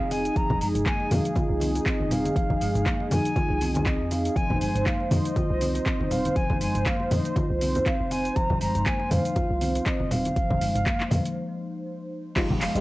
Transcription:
Already playing: D#4 G#4 F5
0.00 F1
0.11 C4 G#5, open hi-hat, muted conga, shaker
0.25 closed hi-hat, shaker
0.36 F1 F3 A#5, kick, closed hi-hat, shaker
0.50 kick, muted conga, high conga, low conga
0.61 G#3 A#5, mid tom, open hi-hat, shaker
0.75 F1, closed hi-hat, mid tom, shaker
0.86 G#5, kick, clap, closed hi-hat, shaker
1.00 muted conga
1.11 F2 F3 F5, open hi-hat, high conga, low conga, shaker
1.25 closed hi-hat, shaker
1.36 F4, kick, closed hi-hat, muted conga, high conga, shaker
1.50 C2
1.60 C4, open hi-hat, high conga, shaker
1.75 closed hi-hat, muted conga, shaker
1.86 C4 D#5, kick, clap, closed hi-hat, shaker
2.00 F1, high conga
2.11 C4 F5, open hi-hat, muted conga, low conga, shaker
2.25 closed hi-hat, high conga, shaker
2.36 F1 F3, kick, closed hi-hat, shaker
2.50 kick, muted conga, high conga
2.61 G#3, mid tom, open hi-hat, shaker
2.75 F1, closed hi-hat, mid tom, shaker
2.86 A#3, kick, clap, closed hi-hat, shaker
3.00 muted conga
3.11 F2 F3 G#5, open hi-hat, high conga, low conga, shaker
3.25 closed hi-hat, shaker
3.36 F4, kick, closed hi-hat, muted conga, high conga, shaker
3.50 C2
3.61 C4, open hi-hat, high conga, shaker
3.74 closed hi-hat, muted conga, high conga, shaker
3.86 C4 D#5, kick, clap, closed hi-hat, shaker
4.00 F2
4.11 C4 F5, open hi-hat, muted conga, shaker
4.25 closed hi-hat, shaker
4.36 F1 F3 C5 G#5, kick, closed hi-hat, shaker
4.50 kick, muted conga, high conga, low conga
4.61 G#3 G#5, mid tom, open hi-hat, shaker
4.75 F1, closed hi-hat, mid tom, shaker
4.86 A#3 F5, kick, clap, closed hi-hat, shaker
5.00 muted conga
5.11 F2 F3 D#5, open hi-hat, high conga, low conga, shaker
5.25 closed hi-hat, shaker
5.36 F4, kick, closed hi-hat, muted conga, high conga, shaker
5.50 C2
5.61 C4, open hi-hat, high conga, shaker
5.75 closed hi-hat, muted conga, shaker
5.86 C4 D#5, kick, clap, closed hi-hat, shaker
6.00 F1, high conga
6.11 C4 F5, open hi-hat, muted conga, low conga, shaker
6.25 closed hi-hat, high conga, shaker
6.36 F1 F3 G#5, kick, closed hi-hat, shaker
6.50 kick, muted conga, high conga
6.61 G#3 G#5, mid tom, open hi-hat, shaker
6.75 F1, closed hi-hat, mid tom, shaker
6.86 A#3 F5, kick, clap, closed hi-hat, shaker
7.00 muted conga
7.11 F2 F3 D#5, open hi-hat, high conga, low conga, shaker
7.25 closed hi-hat, shaker
7.36 F4, kick, closed hi-hat, muted conga, high conga, shaker
7.50 C2
7.61 C4, open hi-hat, high conga, shaker
7.75 closed hi-hat, muted conga, high conga, shaker
7.86 C4 F5, kick, clap, closed hi-hat, shaker
8.00 F1
8.11 C4 G#5, open hi-hat, muted conga, shaker
8.25 closed hi-hat, shaker
8.36 F1 F3 A#5, kick, closed hi-hat, shaker
8.50 kick, muted conga, high conga, low conga
8.61 G#3 A#5, mid tom, open hi-hat, shaker
8.75 F1, closed hi-hat, mid tom, shaker
8.86 A#3 G#5, kick, clap, closed hi-hat, shaker
9.00 muted conga
9.11 F2 F3 F5, open hi-hat, high conga, low conga, shaker
9.25 closed hi-hat, shaker
9.36 F4, kick, closed hi-hat, muted conga, high conga, shaker
9.50 C2
9.61 C4, open hi-hat, high conga, shaker
9.75 closed hi-hat, muted conga, shaker
9.86 D#5, kick, clap, closed hi-hat, shaker
10.00 F1, high conga
10.11 C4 F5, open hi-hat, muted conga, low conga, shaker
10.25 closed hi-hat, high conga, shaker
10.36 F1 F3, kick, closed hi-hat, shaker
10.50 kick, muted conga, high conga, low conga
10.61 G#3, mid tom, open hi-hat, shaker
10.75 F1, closed hi-hat, mid tom, shaker
10.86 A#3, kick, clap, closed hi-hat, shaker
11.00 clap, muted conga
11.11 F2 F3 F5, open hi-hat, high conga, low conga, shaker
11.25 closed hi-hat, shaker
12.36 F1 F3 G#3 C4 D#4 F4 G4, kick, clap, closed hi-hat, crash, downlifter, shaker
12.50 kick, muted conga, high conga, low conga
12.61 G#3 F5, clap, open hi-hat, shaker
12.75 F1 G3 G#3 C4 D#4 F4, closed hi-hat, shaker

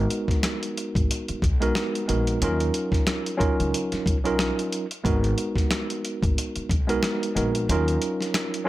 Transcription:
Already playing: G#3 B3 D#4 F#4 A#4
0.10 closed hi-hat
0.28 kick, snare, closed hi-hat
0.43 cross-stick, snare, closed hi-hat
0.63 closed hi-hat
0.78 closed hi-hat
0.95 G#1, kick, closed hi-hat
1.11 closed hi-hat
1.28 muted upright bass stroke, closed hi-hat
1.42 B1, kick, closed hi-hat
1.60 G#3 B3 D#4 F#4 A#4, closed hi-hat
1.75 cross-stick, snare, closed hi-hat
1.95 closed hi-hat
2.08 A#1 G#3 B3 D#4 F#4 A#4, closed hi-hat
2.27 closed hi-hat
2.42 D#2 F#3 C#4 D#4 F4 A#4, closed hi-hat
2.60 closed hi-hat
2.74 closed hi-hat
2.92 kick, snare, closed hi-hat
3.07 cross-stick, snare, closed hi-hat
3.26 closed hi-hat
3.37 F#3 C#4 D#4 F4 A#4, kick, closed hi-hat
3.60 C#2, closed hi-hat
3.74 closed hi-hat
3.92 muted upright bass stroke, snare, closed hi-hat
4.06 B1, kick, closed hi-hat
4.24 F#3 C#4 D#4 F4 A#4, closed hi-hat
4.39 cross-stick, snare, closed hi-hat
4.59 closed hi-hat
4.73 closed hi-hat
4.91 closed hi-hat
5.04 G#1 G#3 B3 D#4 F#4 A#4, kick, closed hi-hat
5.24 closed hi-hat
5.38 closed hi-hat
5.56 kick, snare, closed hi-hat
5.71 cross-stick, snare, closed hi-hat
5.90 closed hi-hat
6.05 closed hi-hat
6.23 G#1, kick, closed hi-hat
6.38 closed hi-hat
6.56 muted upright bass stroke, closed hi-hat
6.70 B1, kick, closed hi-hat
6.88 G#3 B3 D#4 F#4 A#4, closed hi-hat
7.03 cross-stick, snare, closed hi-hat
7.23 closed hi-hat
7.35 A#1 G#3 B3 D#4 F#4 A#4, closed hi-hat
7.55 closed hi-hat
7.69 D#2 F#3 C#4 D#4 F4 A#4, closed hi-hat
7.88 closed hi-hat
8.02 closed hi-hat
8.21 snare, closed hi-hat
8.34 cross-stick, snare, closed hi-hat
8.54 closed hi-hat
8.64 F#3 C#4 D#4

